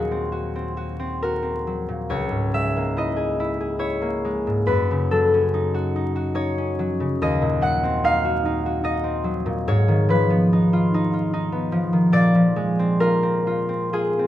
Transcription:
Already playing: D#2 A#2 F#3 A#3 F#4 G#4 A#4
0.11 C4
0.32 F#4
0.55 C4
0.77 F#4
1.00 C4
1.23 F#4 A#4
1.43 C4
1.67 F#3
1.88 A#2
2.10 C#2 C#5
2.31 G#2
2.54 G#3 E5
2.77 A#3
2.97 E4 D#5
3.16 G#4
3.40 E4
3.61 G#4
3.79 E4 C#5
4.02 A#3
4.25 G#3
4.47 G#2
4.67 F#2 B4
4.91 C#3
5.11 F#3 A4
5.34 C#4
5.54 D#4
5.74 F#4
5.96 D#4
6.16 F#4
6.35 D#4 C#5
6.58 C#4
6.79 F#3
7.00 C#3
7.22 D#2 D#5
7.42 A#2
7.61 F#3 F#5
7.83 C4
8.04 D#4 F5
8.25 F#4
8.45 D#4
8.66 F#4
8.84 D#4 D#5
9.04 C4
9.24 F#3
9.46 A#2
9.68 G#2 C#5
9.88 D#3
10.09 F3 B4
10.30 B3
10.53 D#4
10.73 F4
10.94 D#4
11.13 F4
11.33 D#4
11.52 B3
11.72 F3
11.93 D#3
12.12 A#2 D5
12.35 F3
12.56 G#3
12.79 C4
13.00 F4 A#4
13.23 C4
13.47 F4
13.69 C4
13.93 F4 G#4
14.19 C4

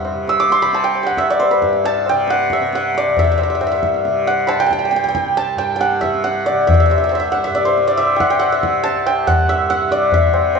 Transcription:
Already playing: C2 G2 C3 E5 F#5
0.05 tabla na
0.12 C3
0.28 E6, tabla te
0.40 D6
0.50 C6, tabla te
0.61 C3 B5
0.73 A5, tabla te
0.84 G5
0.95 tabla na
1.03 F#5 G5
1.11 C2
1.17 E5, tabla ke
1.30 D5
1.40 C5, tabla te
1.51 B4, tabla te
1.61 G2, tabla ke
1.73 tabla te
1.84 A5, tabla tin
2.06 G5, tabla na
2.11 C3
2.27 F#5, tabla te
2.39 tabla te
2.50 E5, tabla ke
2.60 C3, tabla te
2.73 F#5, tabla te
2.95 D5, tabla te
3.08 C2
3.17 E5, tabla tin, tabla ge
3.24 E5
3.32 E5
3.38 E5, tabla na
3.43 E5
3.50 E5
3.55 G2 E5
3.61 E5, tabla na
3.67 E5
3.72 E5
3.83 tabla ke
3.94 tabla te
4.05 C3, tabla te
4.27 F#5, tabla te
4.47 A5 B5, tabla na
4.56 C3 G5
4.66 G5
4.71 G5, tabla ke
4.79 G5
4.85 G5
4.91 G5, tabla te
4.96 G5
5.04 C2 G5, tabla te
5.08 G5
5.15 G5, tabla ke
5.26 tabla te
5.37 A5, tabla tin
5.55 G2 G5, tabla na
5.76 G5
5.81 F#5, tabla te
5.92 tabla te
6.01 C3 E5, tabla ke
6.14 tabla te
6.24 F#5, tabla te
6.46 D5, tabla te
6.52 C3
6.67 E5, tabla tin, tabla ge
6.74 E5
6.80 E5
6.86 E5
6.90 E5, tabla na
6.98 C2 E5
7.04 E5
7.09 E5, tabla na
7.15 E5
7.20 E5
7.32 F#5, tabla te
7.44 G2 E5
7.55 D5, tabla te
7.65 C5
7.77 tabla te
7.88 D5
7.97 C3 E5, tabla na
8.16 F#5 G5, tabla ke
8.30 G5
8.39 F#5, tabla na
8.45 C3
8.52 E5
8.63 tabla ke
8.84 A5, tabla tin
8.94 C2
9.06 G5, tabla na
9.27 F#5, tabla na, tabla ge
9.42 G2
9.49 E5, tabla te
9.70 F#5, tabla te
9.89 C3 D5, tabla te
10.12 E5, tabla tin, tabla ge
10.34 C3, tabla na
10.55 tabla na

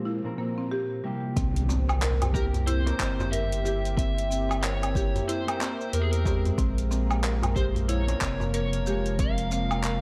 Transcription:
Already playing: A#2 F3 G#3 A#3 C4 C5
0.05 E4
0.24 A#2 C4 C#4 A#4
0.37 A#2 A#3 C4 A#4
0.58 C4
0.71 G4
1.04 C3 G3 A#3 E4 G4
1.36 C2 C4, kick, closed hi-hat, impact, shaker
1.56 closed hi-hat, shaker
1.69 C4, darbuka tek, shaker
1.76 G4 A#4
1.89 darbuka ka, low woodblock, shaker
2.02 A#4, clap, closed hi-hat, shaker
2.22 closed hi-hat, darbuka ka, darbuka dum, low woodblock, shaker
2.33 A#3 E4 G4 A#4, kick, shaker
2.54 closed hi-hat, darbuka dum, shaker
2.67 E4 C5, closed hi-hat, shaker
2.85 A#3 E4 A#4, closed hi-hat, darbuka tek, shaker
2.92 E5
2.99 G1 A#3 C4 E4 A#4, kick, clap, darbuka ka, shaker
3.19 darbuka ka, darbuka tek, darbuka dum, shaker
3.32 A#4 E5, closed hi-hat, shaker
3.52 closed hi-hat, shaker
3.63 A#3 E4 G4, shaker
3.85 closed hi-hat, shaker
3.97 C4 E5, kick, closed hi-hat, shaker
4.18 closed hi-hat, shaker
4.30 C4, shaker
4.49 darbuka ka, low woodblock, shaker
4.62 A#4 C#5, clap, closed hi-hat, shaker
4.82 closed hi-hat, darbuka ka, low woodblock, shaker
4.95 A#3 E4 G4, kick, shaker
5.15 closed hi-hat, darbuka dum, shaker
5.28 E4 C5, closed hi-hat, darbuka ka, shaker
5.47 A#3 E4 A#4, closed hi-hat, low woodblock, shaker
5.59 A#3 C4 E4 A#4, clap, darbuka tek, shaker
5.81 darbuka ka, shaker
5.93 E2 A#4, closed hi-hat, shaker
6.01 G#4
6.11 A#4, closed hi-hat, shaker
6.24 C4 G4, kick, darbuka ka, darbuka tek, shaker
6.28 G#3
6.45 closed hi-hat, darbuka dum, shaker
6.58 A#1 A#3 C4, kick, closed hi-hat, shaker
6.78 closed hi-hat, shaker
6.91 C4, darbuka tek, shaker
7.07 F3, darbuka ka, low woodblock
7.11 shaker
7.24 A#4, clap, closed hi-hat, shaker
7.42 closed hi-hat, darbuka ka, darbuka dum, low woodblock, shaker
7.55 G#3 C4 G4 C5, kick, shaker
7.75 closed hi-hat, darbuka dum, shaker
7.89 E4 C#5, closed hi-hat, shaker
8.07 C4 C#4 A#4, closed hi-hat, darbuka tek, shaker
8.20 F1 C3 C4 A#4, kick, clap, darbuka ka, shaker
8.40 darbuka ka, darbuka tek, darbuka dum, shaker
8.54 A#4 C#5, closed hi-hat, shaker
8.73 closed hi-hat, shaker
8.84 C3 G4, shaker
8.89 G#3
9.06 closed hi-hat, shaker
9.19 C4 F5, kick, closed hi-hat, shaker
9.38 closed hi-hat, shaker
9.52 C4 F5, shaker
9.71 darbuka ka, low woodblock, shaker
9.84 A#4, clap, closed hi-hat, shaker

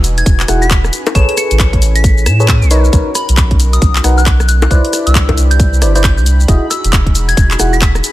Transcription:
Already playing: E1 D#4 F#4 B4 G#5
0.04 open hi-hat, shaker
0.18 G#6, closed hi-hat, shaker
0.26 E1, kick, closed hi-hat, shaker
0.40 clap, shaker
0.48 E1 E4 F#4 G#4 F#5, cross-stick, open hi-hat, shaker
0.62 B6, shaker
0.71 kick, clap, closed hi-hat, shaker
0.84 cross-stick, shaker
0.93 C#4 E4, open hi-hat, shaker
1.07 high bongo, shaker
1.15 A1 G#4 A4 B4 C#5 E7, kick, closed hi-hat, shaker
1.29 E7, open hi-hat
1.37 C#7, cross-stick, open hi-hat, shaker
1.51 A1, closed hi-hat, shaker
1.59 kick, clap, closed hi-hat, shaker
1.73 kick, closed hi-hat
1.82 open hi-hat, shaker
1.96 B6, closed hi-hat, shaker
2.04 kick, closed hi-hat, shaker
2.18 shaker
2.26 A2 E7, cross-stick, open hi-hat, shaker
2.40 G#4 A4 B4 C#5, shaker
2.48 kick, clap, closed hi-hat, shaker
2.62 B1, shaker
2.71 D#4 F#4 A#4 B4 C#5, open hi-hat, shaker
2.84 shaker
2.93 B1 D#4 A#4 B4 C#5, kick, closed hi-hat, shaker
3.15 B5, cross-stick, open hi-hat, shaker
3.29 B1, closed hi-hat, shaker
3.37 kick, clap, closed hi-hat, shaker
3.51 kick, closed hi-hat
3.60 open hi-hat, shaker
3.73 D#6, closed hi-hat, shaker
3.82 B1, kick, closed hi-hat, shaker
3.96 clap, shaker
4.04 B1 D#4 A#4 B4 F#5, cross-stick, open hi-hat, shaker
4.18 F#6, shaker
4.26 kick, clap, closed hi-hat, shaker
4.40 cross-stick, shaker
4.48 F#6, open hi-hat, shaker
4.62 F#6, high bongo, shaker
4.71 C2 D4 E4 G4 B4 C5 D5 B5 F#6, kick, closed hi-hat, shaker
4.85 open hi-hat
4.93 cross-stick, open hi-hat, shaker
5.06 C2 E6, closed hi-hat, shaker
5.15 kick, clap, closed hi-hat, shaker
5.29 kick, closed hi-hat, high bongo
5.38 open hi-hat, shaker
5.51 G6, closed hi-hat, shaker
5.60 kick, closed hi-hat, shaker
5.73 shaker
5.82 G1 E4 B4 C5 D5, cross-stick, open hi-hat, shaker
5.95 E4 B4 C5 D5 G6, closed hi-hat, shaker
6.04 G6, kick, clap, closed hi-hat, shaker
6.17 C2 G6, shaker
6.26 open hi-hat, shaker
6.40 shaker
6.48 E1 D#4 E4 F#4 G#4 D#5, kick, closed hi-hat, shaker
6.70 E6, cross-stick, open hi-hat, shaker
6.84 E1, closed hi-hat, shaker
6.93 kick, clap, closed hi-hat, shaker
7.06 kick, closed hi-hat
7.15 open hi-hat, shaker
7.29 G#6, closed hi-hat, shaker
7.37 E1, kick, closed hi-hat, shaker
7.51 clap, shaker
7.59 E1 E4 F#4 G#4 F#5, cross-stick, open hi-hat, shaker
7.73 B6, shaker
7.82 kick, clap, closed hi-hat, shaker
7.95 cross-stick, shaker
8.04 C#4 E4, open hi-hat, shaker

